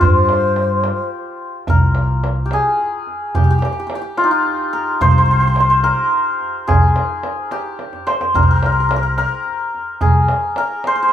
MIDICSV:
0, 0, Header, 1, 5, 480
1, 0, Start_track
1, 0, Tempo, 555556
1, 20, Time_signature, 6, 3, 24, 8
1, 9615, End_track
2, 0, Start_track
2, 0, Title_t, "Ney"
2, 0, Program_c, 0, 77
2, 17, Note_on_c, 0, 72, 83
2, 943, Note_off_c, 0, 72, 0
2, 9615, End_track
3, 0, Start_track
3, 0, Title_t, "Santur"
3, 0, Program_c, 1, 15
3, 0, Note_on_c, 1, 65, 63
3, 0, Note_on_c, 1, 67, 80
3, 8, Note_on_c, 1, 72, 74
3, 1466, Note_on_c, 1, 70, 72
3, 2121, Note_off_c, 1, 67, 0
3, 2121, Note_on_c, 1, 67, 57
3, 2187, Note_on_c, 1, 68, 78
3, 2239, Note_off_c, 1, 67, 0
3, 2288, Note_off_c, 1, 72, 0
3, 2580, Note_off_c, 1, 65, 0
3, 2894, Note_on_c, 1, 67, 70
3, 2946, Note_off_c, 1, 68, 0
3, 2968, Note_off_c, 1, 67, 0
3, 2971, Note_on_c, 1, 67, 58
3, 3025, Note_off_c, 1, 67, 0
3, 3028, Note_on_c, 1, 67, 71
3, 3094, Note_off_c, 1, 67, 0
3, 3098, Note_on_c, 1, 67, 53
3, 3148, Note_off_c, 1, 67, 0
3, 3152, Note_on_c, 1, 67, 53
3, 3215, Note_off_c, 1, 67, 0
3, 3218, Note_on_c, 1, 67, 47
3, 3276, Note_off_c, 1, 67, 0
3, 3279, Note_on_c, 1, 67, 57
3, 3338, Note_off_c, 1, 67, 0
3, 3341, Note_on_c, 1, 67, 50
3, 3411, Note_off_c, 1, 67, 0
3, 3415, Note_on_c, 1, 67, 69
3, 3466, Note_off_c, 1, 67, 0
3, 3469, Note_on_c, 1, 67, 57
3, 3607, Note_on_c, 1, 65, 85
3, 3660, Note_on_c, 1, 63, 70
3, 3721, Note_off_c, 1, 65, 0
3, 3724, Note_on_c, 1, 65, 78
3, 3914, Note_off_c, 1, 70, 0
3, 4087, Note_on_c, 1, 70, 80
3, 4332, Note_on_c, 1, 72, 96
3, 4412, Note_off_c, 1, 72, 0
3, 4415, Note_on_c, 1, 72, 62
3, 4472, Note_off_c, 1, 72, 0
3, 4475, Note_on_c, 1, 72, 72
3, 4537, Note_off_c, 1, 72, 0
3, 4541, Note_on_c, 1, 72, 61
3, 4583, Note_off_c, 1, 72, 0
3, 4587, Note_on_c, 1, 72, 64
3, 4663, Note_off_c, 1, 72, 0
3, 4666, Note_on_c, 1, 72, 51
3, 4725, Note_off_c, 1, 72, 0
3, 4729, Note_on_c, 1, 72, 60
3, 4781, Note_off_c, 1, 72, 0
3, 4784, Note_on_c, 1, 72, 51
3, 4837, Note_off_c, 1, 72, 0
3, 4840, Note_on_c, 1, 72, 78
3, 4920, Note_off_c, 1, 72, 0
3, 4924, Note_on_c, 1, 72, 74
3, 5040, Note_off_c, 1, 70, 0
3, 5044, Note_on_c, 1, 70, 94
3, 5767, Note_on_c, 1, 68, 83
3, 5819, Note_off_c, 1, 67, 0
3, 6494, Note_on_c, 1, 67, 75
3, 6546, Note_off_c, 1, 68, 0
3, 6632, Note_off_c, 1, 65, 0
3, 6780, Note_off_c, 1, 63, 0
3, 6965, Note_off_c, 1, 72, 0
3, 6969, Note_on_c, 1, 72, 77
3, 7214, Note_off_c, 1, 70, 0
3, 7217, Note_on_c, 1, 70, 79
3, 7276, Note_off_c, 1, 70, 0
3, 7280, Note_on_c, 1, 70, 50
3, 7347, Note_off_c, 1, 70, 0
3, 7350, Note_on_c, 1, 70, 68
3, 7390, Note_off_c, 1, 70, 0
3, 7393, Note_on_c, 1, 70, 54
3, 7478, Note_off_c, 1, 70, 0
3, 7481, Note_on_c, 1, 70, 60
3, 7531, Note_off_c, 1, 70, 0
3, 7535, Note_on_c, 1, 70, 49
3, 7600, Note_off_c, 1, 70, 0
3, 7603, Note_on_c, 1, 70, 52
3, 7674, Note_off_c, 1, 70, 0
3, 7678, Note_on_c, 1, 70, 50
3, 7740, Note_off_c, 1, 70, 0
3, 7744, Note_on_c, 1, 70, 65
3, 7798, Note_off_c, 1, 70, 0
3, 7801, Note_on_c, 1, 70, 60
3, 7927, Note_off_c, 1, 70, 0
3, 7931, Note_on_c, 1, 70, 89
3, 8650, Note_on_c, 1, 68, 76
3, 8702, Note_off_c, 1, 67, 0
3, 9136, Note_off_c, 1, 70, 0
3, 9139, Note_on_c, 1, 70, 79
3, 9249, Note_off_c, 1, 72, 0
3, 9393, Note_on_c, 1, 72, 86
3, 9462, Note_off_c, 1, 72, 0
3, 9466, Note_on_c, 1, 72, 63
3, 9522, Note_off_c, 1, 72, 0
3, 9525, Note_on_c, 1, 72, 69
3, 9573, Note_off_c, 1, 72, 0
3, 9577, Note_on_c, 1, 72, 58
3, 9615, Note_off_c, 1, 68, 0
3, 9615, Note_off_c, 1, 70, 0
3, 9615, Note_off_c, 1, 72, 0
3, 9615, End_track
4, 0, Start_track
4, 0, Title_t, "Upright bass"
4, 0, Program_c, 2, 32
4, 18, Note_on_c, 2, 43, 79
4, 774, Note_off_c, 2, 43, 0
4, 1449, Note_on_c, 2, 36, 89
4, 2208, Note_off_c, 2, 36, 0
4, 2892, Note_on_c, 2, 36, 79
4, 3083, Note_off_c, 2, 36, 0
4, 4327, Note_on_c, 2, 36, 93
4, 5086, Note_off_c, 2, 36, 0
4, 5775, Note_on_c, 2, 36, 83
4, 5965, Note_off_c, 2, 36, 0
4, 7209, Note_on_c, 2, 36, 82
4, 7968, Note_off_c, 2, 36, 0
4, 8652, Note_on_c, 2, 36, 83
4, 8844, Note_off_c, 2, 36, 0
4, 9615, End_track
5, 0, Start_track
5, 0, Title_t, "Tombak"
5, 3, Note_on_c, 9, 64, 85
5, 90, Note_off_c, 9, 64, 0
5, 248, Note_on_c, 9, 63, 74
5, 335, Note_off_c, 9, 63, 0
5, 486, Note_on_c, 9, 63, 58
5, 573, Note_off_c, 9, 63, 0
5, 723, Note_on_c, 9, 63, 59
5, 809, Note_off_c, 9, 63, 0
5, 1445, Note_on_c, 9, 64, 89
5, 1532, Note_off_c, 9, 64, 0
5, 1682, Note_on_c, 9, 63, 67
5, 1768, Note_off_c, 9, 63, 0
5, 1932, Note_on_c, 9, 63, 65
5, 2019, Note_off_c, 9, 63, 0
5, 2167, Note_on_c, 9, 63, 63
5, 2254, Note_off_c, 9, 63, 0
5, 2411, Note_on_c, 9, 62, 24
5, 2498, Note_off_c, 9, 62, 0
5, 2651, Note_on_c, 9, 62, 26
5, 2738, Note_off_c, 9, 62, 0
5, 2891, Note_on_c, 9, 64, 86
5, 2978, Note_off_c, 9, 64, 0
5, 3130, Note_on_c, 9, 63, 70
5, 3217, Note_off_c, 9, 63, 0
5, 3367, Note_on_c, 9, 63, 67
5, 3453, Note_off_c, 9, 63, 0
5, 3607, Note_on_c, 9, 63, 58
5, 3693, Note_off_c, 9, 63, 0
5, 3852, Note_on_c, 9, 62, 25
5, 3939, Note_off_c, 9, 62, 0
5, 4094, Note_on_c, 9, 62, 26
5, 4181, Note_off_c, 9, 62, 0
5, 4331, Note_on_c, 9, 64, 87
5, 4418, Note_off_c, 9, 64, 0
5, 4804, Note_on_c, 9, 63, 64
5, 4890, Note_off_c, 9, 63, 0
5, 5041, Note_on_c, 9, 63, 54
5, 5128, Note_off_c, 9, 63, 0
5, 5296, Note_on_c, 9, 62, 23
5, 5382, Note_off_c, 9, 62, 0
5, 5538, Note_on_c, 9, 62, 24
5, 5624, Note_off_c, 9, 62, 0
5, 5776, Note_on_c, 9, 64, 103
5, 5862, Note_off_c, 9, 64, 0
5, 6012, Note_on_c, 9, 63, 70
5, 6098, Note_off_c, 9, 63, 0
5, 6251, Note_on_c, 9, 63, 67
5, 6337, Note_off_c, 9, 63, 0
5, 6491, Note_on_c, 9, 63, 59
5, 6577, Note_off_c, 9, 63, 0
5, 6731, Note_on_c, 9, 63, 52
5, 6818, Note_off_c, 9, 63, 0
5, 6850, Note_on_c, 9, 62, 55
5, 6937, Note_off_c, 9, 62, 0
5, 6975, Note_on_c, 9, 63, 75
5, 7062, Note_off_c, 9, 63, 0
5, 7093, Note_on_c, 9, 62, 82
5, 7179, Note_off_c, 9, 62, 0
5, 7218, Note_on_c, 9, 64, 93
5, 7304, Note_off_c, 9, 64, 0
5, 7453, Note_on_c, 9, 63, 71
5, 7539, Note_off_c, 9, 63, 0
5, 7696, Note_on_c, 9, 63, 75
5, 7783, Note_off_c, 9, 63, 0
5, 7929, Note_on_c, 9, 63, 54
5, 8015, Note_off_c, 9, 63, 0
5, 8175, Note_on_c, 9, 62, 23
5, 8262, Note_off_c, 9, 62, 0
5, 8418, Note_on_c, 9, 62, 27
5, 8505, Note_off_c, 9, 62, 0
5, 8647, Note_on_c, 9, 64, 81
5, 8733, Note_off_c, 9, 64, 0
5, 8886, Note_on_c, 9, 63, 73
5, 8972, Note_off_c, 9, 63, 0
5, 9124, Note_on_c, 9, 63, 75
5, 9211, Note_off_c, 9, 63, 0
5, 9366, Note_on_c, 9, 63, 63
5, 9453, Note_off_c, 9, 63, 0
5, 9615, End_track
0, 0, End_of_file